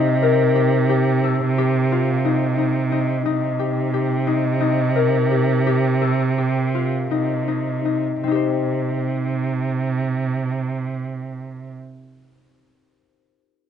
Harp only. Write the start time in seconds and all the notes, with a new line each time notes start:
Already playing: C4 D#4 G4
0.22 A#4
0.55 G4
0.89 G4
1.24 A4
1.58 G4
1.92 F4
2.25 D#4
2.58 D#4
2.92 D#4
3.25 D#4
3.59 G4
3.94 G4
4.27 D#4
4.61 D#4
4.96 A#4
5.31 G4
5.67 G4
6.02 A4
6.38 G4
6.75 F4
7.11 D#4
7.48 D#4
7.85 D#4
8.23 C4
8.27 D#4 G4
8.35 C5